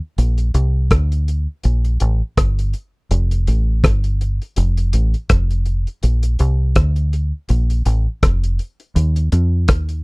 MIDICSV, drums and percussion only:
0, 0, Header, 1, 2, 480
1, 0, Start_track
1, 0, Key_signature, -2, "major"
1, 0, Tempo, 732064
1, 116, Time_signature, 4, 2, 24, 8
1, 6581, End_track
2, 0, Start_track
2, 0, Title_t, "Drums"
2, 119, Note_on_c, 9, 42, 94
2, 185, Note_off_c, 9, 42, 0
2, 247, Note_on_c, 9, 42, 55
2, 313, Note_off_c, 9, 42, 0
2, 356, Note_on_c, 9, 42, 78
2, 421, Note_off_c, 9, 42, 0
2, 595, Note_on_c, 9, 42, 98
2, 596, Note_on_c, 9, 36, 123
2, 599, Note_on_c, 9, 37, 126
2, 660, Note_off_c, 9, 42, 0
2, 662, Note_off_c, 9, 36, 0
2, 665, Note_off_c, 9, 37, 0
2, 733, Note_on_c, 9, 42, 51
2, 799, Note_off_c, 9, 42, 0
2, 840, Note_on_c, 9, 42, 67
2, 905, Note_off_c, 9, 42, 0
2, 1072, Note_on_c, 9, 42, 83
2, 1138, Note_off_c, 9, 42, 0
2, 1210, Note_on_c, 9, 42, 52
2, 1276, Note_off_c, 9, 42, 0
2, 1312, Note_on_c, 9, 42, 91
2, 1377, Note_off_c, 9, 42, 0
2, 1557, Note_on_c, 9, 36, 118
2, 1557, Note_on_c, 9, 42, 108
2, 1559, Note_on_c, 9, 37, 110
2, 1622, Note_off_c, 9, 42, 0
2, 1623, Note_off_c, 9, 36, 0
2, 1624, Note_off_c, 9, 37, 0
2, 1696, Note_on_c, 9, 42, 59
2, 1762, Note_off_c, 9, 42, 0
2, 1793, Note_on_c, 9, 42, 58
2, 1858, Note_off_c, 9, 42, 0
2, 2037, Note_on_c, 9, 42, 92
2, 2103, Note_off_c, 9, 42, 0
2, 2172, Note_on_c, 9, 42, 51
2, 2237, Note_off_c, 9, 42, 0
2, 2277, Note_on_c, 9, 42, 78
2, 2343, Note_off_c, 9, 42, 0
2, 2516, Note_on_c, 9, 36, 122
2, 2516, Note_on_c, 9, 42, 98
2, 2521, Note_on_c, 9, 37, 127
2, 2582, Note_off_c, 9, 36, 0
2, 2582, Note_off_c, 9, 42, 0
2, 2586, Note_off_c, 9, 37, 0
2, 2648, Note_on_c, 9, 42, 53
2, 2714, Note_off_c, 9, 42, 0
2, 2760, Note_on_c, 9, 42, 68
2, 2826, Note_off_c, 9, 42, 0
2, 2896, Note_on_c, 9, 42, 36
2, 2962, Note_off_c, 9, 42, 0
2, 2992, Note_on_c, 9, 42, 86
2, 3058, Note_off_c, 9, 42, 0
2, 3130, Note_on_c, 9, 42, 53
2, 3196, Note_off_c, 9, 42, 0
2, 3233, Note_on_c, 9, 42, 89
2, 3298, Note_off_c, 9, 42, 0
2, 3369, Note_on_c, 9, 42, 38
2, 3435, Note_off_c, 9, 42, 0
2, 3471, Note_on_c, 9, 42, 107
2, 3474, Note_on_c, 9, 37, 117
2, 3475, Note_on_c, 9, 36, 116
2, 3537, Note_off_c, 9, 42, 0
2, 3539, Note_off_c, 9, 37, 0
2, 3540, Note_off_c, 9, 36, 0
2, 3610, Note_on_c, 9, 42, 56
2, 3675, Note_off_c, 9, 42, 0
2, 3708, Note_on_c, 9, 42, 56
2, 3774, Note_off_c, 9, 42, 0
2, 3849, Note_on_c, 9, 42, 37
2, 3915, Note_off_c, 9, 42, 0
2, 3952, Note_on_c, 9, 42, 93
2, 4017, Note_off_c, 9, 42, 0
2, 4083, Note_on_c, 9, 42, 56
2, 4149, Note_off_c, 9, 42, 0
2, 4190, Note_on_c, 9, 42, 80
2, 4255, Note_off_c, 9, 42, 0
2, 4429, Note_on_c, 9, 42, 104
2, 4433, Note_on_c, 9, 36, 124
2, 4434, Note_on_c, 9, 37, 125
2, 4495, Note_off_c, 9, 42, 0
2, 4498, Note_off_c, 9, 36, 0
2, 4499, Note_off_c, 9, 37, 0
2, 4564, Note_on_c, 9, 42, 51
2, 4629, Note_off_c, 9, 42, 0
2, 4675, Note_on_c, 9, 42, 71
2, 4740, Note_off_c, 9, 42, 0
2, 4909, Note_on_c, 9, 42, 88
2, 4975, Note_off_c, 9, 42, 0
2, 5048, Note_on_c, 9, 42, 54
2, 5114, Note_off_c, 9, 42, 0
2, 5151, Note_on_c, 9, 42, 93
2, 5216, Note_off_c, 9, 42, 0
2, 5394, Note_on_c, 9, 42, 107
2, 5395, Note_on_c, 9, 36, 105
2, 5396, Note_on_c, 9, 37, 113
2, 5460, Note_off_c, 9, 36, 0
2, 5460, Note_off_c, 9, 42, 0
2, 5462, Note_off_c, 9, 37, 0
2, 5531, Note_on_c, 9, 42, 58
2, 5596, Note_off_c, 9, 42, 0
2, 5633, Note_on_c, 9, 42, 59
2, 5699, Note_off_c, 9, 42, 0
2, 5769, Note_on_c, 9, 42, 36
2, 5834, Note_off_c, 9, 42, 0
2, 5875, Note_on_c, 9, 42, 99
2, 5940, Note_off_c, 9, 42, 0
2, 6006, Note_on_c, 9, 42, 54
2, 6071, Note_off_c, 9, 42, 0
2, 6112, Note_on_c, 9, 42, 83
2, 6177, Note_off_c, 9, 42, 0
2, 6347, Note_on_c, 9, 42, 104
2, 6352, Note_on_c, 9, 36, 121
2, 6352, Note_on_c, 9, 37, 122
2, 6413, Note_off_c, 9, 42, 0
2, 6417, Note_off_c, 9, 37, 0
2, 6418, Note_off_c, 9, 36, 0
2, 6483, Note_on_c, 9, 42, 54
2, 6548, Note_off_c, 9, 42, 0
2, 6581, End_track
0, 0, End_of_file